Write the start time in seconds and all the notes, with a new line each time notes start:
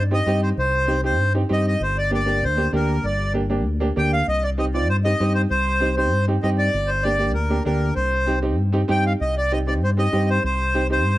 Already playing: G2
0.11 C4 D#4 G4 D#5
0.26 G2 C4 D#4 G4
0.43 C5
0.57 C2 C5
0.88 C4 D#4 G4
1.03 C4 D#4 G4 C5
1.18 G2
1.34 C4 D#4 G4
1.49 G2 C4 D#4 G4 D#5
1.67 D#5
1.80 G1 C5
1.98 D5
2.11 A#3 D4 G4 D5
2.26 A#3 D4 G4
2.42 D2 C5
2.57 A#3 D4 G4
2.72 D2 A#3 D4 G4 A#4
3.03 G1 D5
3.34 A#3 D4 G4
3.50 A#3 D4 G4
3.66 D2
3.80 A#3 D4 G4
3.96 D2 A#3 D4 G4 G5
4.13 F5
4.27 C2 D#5
4.43 D5
4.58 C4 D#4 G4 D#5
4.74 C4 D#4 F4 D5
4.88 G2 C5
5.04 C4 D#4 G4 D#5
5.20 G2 C4 D#4 G4
5.35 C5
5.50 C2 C5
5.80 C4 D#4 G4
5.97 C4 D#4 G4 C5
6.12 G2
6.28 C4 D#4 G4
6.43 G2 C4 D#4 G4 D#5
6.58 D5
6.74 G1
6.87 C5
7.03 A#3 D4 G4 D5
7.18 A#3 D4 G4
7.34 D2 A#4
7.50 A#3 D4 G4
7.65 D2 A#3 D4 G4 A#4
7.96 C2 C5
8.26 C4 D#4 G4
8.42 C4 D#4 G4
8.58 G2
8.72 C4 D#4 G4
8.88 G2 C4 D#4 G4 G5
9.06 F5
9.20 C2 D#5
9.37 D5
9.51 C4 D#4 G4 D#5
9.67 C4 D#4 G4 D5
9.82 G2 C5
9.97 C4 D#4 G4 D#5
10.12 G2 C4 D#4 G4
10.30 C5
10.44 C2 C5
10.74 C4 D#4 G4
10.90 C4 D#4 G4 C5
11.04 G2